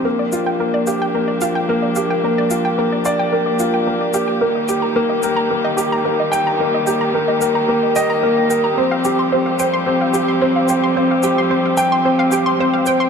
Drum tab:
SH |-x-x-x-x|-x-x-x-x|-x-x-x-x|-x-x-x-x|

SH |-x-x-x-x|-x-x-x-x|